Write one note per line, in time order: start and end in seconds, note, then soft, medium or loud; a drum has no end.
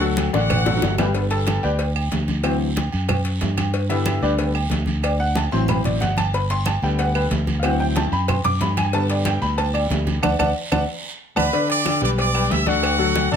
0.00 0.28 D2 loud
0.00 0.27 F#3 medium
0.00 0.28 F#4 medium
0.00 0.28 A4 medium
0.00 high conga soft
0.17 cowbell medium
0.17 high conga loud
0.17 low timbale medium
0.17 low agogo medium
0.17 short guiro medium
0.33 0.79 A1 loud
0.33 0.60 D3 medium
0.33 0.60 D4 medium
0.33 0.95 F#4 medium
0.33 0.60 D5 medium
0.33 0.95 F#5 medium
0.33 high bongo medium
0.33 low agogo medium
0.33 short guiro medium
0.50 cowbell loud
0.50 high conga soft
0.50 low conga loud
0.50 low agogo loud
0.50 long guiro medium
0.50 claves medium
0.66 0.92 F#3 medium
0.66 0.92 F#4 medium
0.66 0.93 A4 medium
0.66 cowbell medium
0.66 low bongo medium
0.66 high conga soft
0.66 low conga medium
0.66 high timbale medium
0.77 high timbale medium
0.82 1.57 G1 loud
0.82 cowbell medium
0.82 low bongo medium
0.82 high conga medium
0.82 low agogo medium
0.82 short guiro medium
0.88 low timbale medium
0.98 1.11 G3 medium
0.98 1.12 G4 medium
0.98 1.12 B4 medium
0.98 cowbell medium
0.98 low bongo medium
0.98 high conga medium
0.98 low timbale loud
0.98 low agogo loud
0.98 short guiro medium
0.98 claves medium
1.14 1.60 D3 medium
1.14 1.61 G3 medium
1.14 1.61 B3 medium
1.14 cowbell loud
1.14 high conga soft
1.14 long guiro medium
1.31 1.61 A4 medium
1.31 1.61 A5 medium
1.31 cowbell medium
1.31 high conga soft
1.31 low agogo medium
1.47 cowbell medium
1.47 high conga loud
1.47 low timbale medium
1.47 low agogo loud
1.47 short guiro medium
1.47 claves medium
1.63 2.09 D2 medium
1.63 1.79 G4 medium
1.63 1.79 B4 medium
1.63 1.79 D5 medium
1.63 1.79 G5 medium
1.63 high conga soft
1.63 short guiro medium
1.79 cowbell loud
1.79 high conga soft
1.79 low agogo medium
1.79 long guiro medium
1.96 high conga soft
1.96 low agogo loud
1.96 claves medium
2.11 2.87 D2 loud
2.11 cowbell medium
2.11 high conga medium
2.11 low timbale medium
2.11 short guiro medium
2.28 high conga medium
2.28 low agogo medium
2.28 short guiro medium
2.43 2.65 E3 medium
2.43 2.66 F#3 medium
2.43 2.66 C4 medium
2.43 cowbell loud
2.43 high conga soft
2.43 low agogo loud
2.43 long guiro medium
2.43 claves medium
2.61 high conga soft
2.76 cowbell medium
2.76 high conga loud
2.76 low timbale medium
2.76 low agogo medium
2.76 short guiro medium
2.92 3.38 F#2 medium
2.92 high conga soft
2.92 low agogo medium
2.92 short guiro medium
3.08 cowbell loud
3.08 high conga soft
3.08 low conga medium
3.08 low agogo loud
3.08 long guiro medium
3.08 claves medium
3.25 cowbell medium
3.25 high conga soft
3.41 4.17 G2 medium
3.41 cowbell medium
3.41 high conga medium
3.41 low timbale medium
3.41 low agogo medium
3.41 short guiro medium
3.57 cowbell medium
3.57 high conga medium
3.57 low agogo loud
3.57 short guiro medium
3.57 claves medium
3.74 cowbell loud
3.74 high conga soft
3.74 long guiro medium
3.89 4.36 D3 medium
3.89 4.36 G3 medium
3.89 4.37 B3 medium
3.89 4.20 E4 medium
3.89 4.20 E5 loud
3.89 cowbell medium
3.89 high conga soft
3.89 low agogo medium
4.06 cowbell medium
4.06 high conga loud
4.06 low timbale medium
4.06 low agogo loud
4.06 short guiro medium
4.06 claves medium
4.22 4.68 D2 medium
4.22 4.33 D4 medium
4.22 4.33 G4 medium
4.22 4.33 B4 medium
4.22 4.32 D5 medium
4.22 high conga soft
4.22 short guiro medium
4.38 4.53 D3 medium
4.38 4.53 G3 soft
4.38 4.53 B3 medium
4.38 cowbell loud
4.38 high conga soft
4.38 low agogo medium
4.38 long guiro medium
4.54 high conga soft
4.54 low agogo loud
4.54 claves medium
4.70 5.47 D2 loud
4.70 cowbell medium
4.70 high conga medium
4.70 low timbale medium
4.70 short guiro medium
4.86 high conga medium
4.86 low agogo medium
4.86 short guiro medium
5.03 5.19 D5 medium
5.03 cowbell loud
5.03 high conga soft
5.03 low agogo loud
5.03 long guiro medium
5.03 claves medium
5.19 5.36 F#5 loud
5.19 high conga soft
5.35 5.52 A5 medium
5.35 cowbell medium
5.35 high conga loud
5.35 low timbale medium
5.35 low agogo medium
5.35 short guiro medium
5.52 5.83 A1 medium
5.52 5.98 E3 medium
5.52 5.99 F#3 medium
5.52 5.99 C4 medium
5.52 5.68 C6 loud
5.52 high conga soft
5.52 low agogo medium
5.52 short guiro medium
5.68 5.85 B5 medium
5.68 cowbell loud
5.68 high conga soft
5.68 low conga medium
5.68 low agogo loud
5.68 long guiro medium
5.68 claves medium
5.84 6.00 A1 medium
5.84 6.01 D5 medium
5.84 cowbell medium
5.84 high conga soft
5.84 low conga medium
6.00 6.77 G1 medium
6.00 6.17 F#5 medium
6.00 cowbell medium
6.00 high conga medium
6.00 low timbale medium
6.00 low agogo medium
6.00 short guiro medium
6.17 6.33 A5 loud
6.17 cowbell medium
6.17 high conga medium
6.17 low agogo loud
6.17 short guiro medium
6.17 claves medium
6.33 6.50 B5 medium
6.33 cowbell loud
6.33 high conga soft
6.33 long guiro medium
6.49 6.66 C6 loud
6.49 cowbell medium
6.49 high conga soft
6.49 low agogo medium
6.66 6.82 A5 medium
6.66 cowbell medium
6.66 high conga loud
6.66 low timbale medium
6.66 low agogo loud
6.66 short guiro medium
6.66 claves medium
6.82 7.28 D2 medium
6.82 7.60 D3 medium
6.82 7.60 G3 soft
6.82 7.60 B3 medium
6.82 6.99 G5 medium
6.82 high conga soft
6.82 short guiro medium
6.98 7.15 F#5 medium
6.98 cowbell loud
6.98 high conga soft
6.98 low agogo medium
6.98 long guiro medium
7.15 7.25 B4 medium
7.15 high conga soft
7.15 low agogo loud
7.15 claves medium
7.31 8.07 D2 loud
7.31 cowbell medium
7.31 high conga medium
7.31 low timbale medium
7.31 short guiro medium
7.47 high conga medium
7.47 low agogo medium
7.47 short guiro medium
7.59 8.10 E3 medium
7.59 7.62 F5 medium
7.59 cowbell loud
7.64 8.10 F#3 medium
7.64 8.10 C4 medium
7.64 7.79 F#5 medium
7.64 high conga soft
7.64 low agogo loud
7.64 long guiro medium
7.64 claves medium
7.80 7.96 G5 loud
7.80 high conga soft
7.96 8.12 A5 medium
7.96 cowbell medium
7.96 high conga loud
7.96 low timbale medium
7.96 low agogo medium
7.96 short guiro medium
8.12 8.42 F#2 loud
8.12 8.28 B5 medium
8.12 high conga soft
8.12 low agogo medium
8.12 short guiro medium
8.28 8.44 C6 medium
8.28 cowbell loud
8.28 high conga soft
8.28 low conga medium
8.28 low agogo loud
8.28 long guiro medium
8.28 claves medium
8.44 8.60 F#2 medium
8.44 8.61 D6 loud
8.44 cowbell medium
8.44 high conga soft
8.44 low conga medium
8.61 9.36 G2 medium
8.61 8.77 B5 medium
8.61 cowbell medium
8.61 high conga medium
8.61 low timbale medium
8.61 low agogo medium
8.61 short guiro medium
8.77 8.93 G#5 loud
8.77 cowbell medium
8.77 high conga medium
8.77 low agogo loud
8.77 short guiro medium
8.77 claves medium
8.93 10.19 D3 medium
8.93 10.20 G3 medium
8.93 10.20 B3 medium
8.93 9.10 A5 loud
8.93 cowbell loud
8.93 high conga soft
8.93 long guiro medium
9.10 9.26 D5 medium
9.10 cowbell medium
9.10 high conga soft
9.10 low agogo loud
9.25 9.42 G5 medium
9.25 cowbell medium
9.25 high conga loud
9.25 low timbale medium
9.25 low agogo loud
9.25 short guiro medium
9.25 claves medium
9.42 9.87 D2 medium
9.42 9.58 B5 loud
9.42 high conga soft
9.42 short guiro medium
9.58 9.74 A5 loud
9.58 cowbell loud
9.58 high conga soft
9.58 low agogo medium
9.58 long guiro medium
9.74 9.84 D5 medium
9.74 high conga soft
9.74 low agogo loud
9.74 claves medium
9.90 10.21 D2 medium
9.90 cowbell medium
9.90 high conga medium
9.90 low timbale medium
9.90 short guiro medium
10.07 high conga medium
10.07 low agogo medium
10.07 short guiro medium
10.23 10.35 D2 medium
10.23 10.33 D5 medium
10.23 10.33 F#5 medium
10.23 10.33 A5 medium
10.23 cowbell loud
10.23 high conga loud
10.23 high timbale loud
10.23 long guiro loud
10.23 claves loud
10.39 10.51 D2 medium
10.39 10.50 D5 loud
10.39 10.50 F#5 loud
10.39 10.50 A5 loud
10.39 cowbell loud
10.39 high conga loud
10.39 high timbale loud
10.39 long guiro loud
10.39 claves loud
10.72 10.84 D2 loud
10.72 10.82 D5 medium
10.72 10.82 F#5 loud
10.72 10.82 A5 medium
10.72 cowbell loud
10.72 high conga loud
10.72 high timbale loud
10.72 long guiro loud
10.72 claves loud
11.36 11.49 D2 loud
11.36 11.68 B4 medium
11.36 11.47 D5 loud
11.36 11.47 F#5 loud
11.36 11.47 A5 loud
11.36 11.68 B5 medium
11.36 cowbell medium
11.36 high conga medium
11.36 high timbale loud
11.36 long guiro loud
11.36 claves loud
11.53 11.80 D3 medium
11.53 11.80 D4 medium
11.53 11.80 D5 medium
11.53 cowbell loud
11.53 high conga soft
11.53 long guiro medium
11.69 12.01 D5 loud
11.69 12.00 D6 medium
11.69 cowbell medium
11.69 high conga soft
11.69 low agogo medium
11.85 11.99 D3 medium
11.85 11.99 D4 medium
11.85 11.99 D5 medium
11.85 cowbell medium
11.85 high conga loud
11.85 low timbale medium
11.85 low agogo loud
11.85 short guiro medium
11.85 claves medium
12.01 12.47 B1 loud
12.01 12.28 G3 medium
12.01 12.28 G4 medium
12.01 12.29 B4 medium
12.01 12.11 D5 medium
12.01 12.11 D6 medium
12.01 short guiro medium
12.18 12.49 D5 loud
12.18 12.49 D6 medium
12.18 cowbell loud
12.18 high conga soft
12.18 low agogo medium
12.18 long guiro medium
12.34 12.61 G3 medium
12.34 12.61 G4 medium
12.34 12.61 B4 medium
12.34 high conga soft
12.34 low agogo loud
12.34 claves medium
12.50 13.26 D2 loud
12.50 12.67 E5 medium
12.50 12.67 E6 medium
12.50 cowbell medium
12.50 high conga medium
12.50 low timbale medium
12.50 short guiro medium
12.66 12.93 D3 loud
12.66 12.93 D4 medium
12.66 13.32 F#4 medium
12.66 12.94 D5 medium
12.66 13.33 F#5 loud
12.66 high conga medium
12.66 low agogo medium
12.66 short guiro medium
12.83 cowbell loud
12.83 high conga soft
12.83 low agogo loud
12.83 long guiro medium
12.83 claves medium
12.99 13.26 F#3 medium
12.99 13.26 F#4 medium
12.99 13.26 A4 medium
12.99 high conga soft
13.15 cowbell medium
13.15 high conga loud
13.15 low timbale medium
13.15 low agogo medium
13.15 short guiro medium
13.31 13.36 A1 medium
13.31 13.36 D3 medium
13.31 13.36 D4 medium
13.31 13.36 A4 medium
13.31 13.36 D5 medium
13.31 13.36 A5 loud
13.31 low agogo medium
13.31 short guiro medium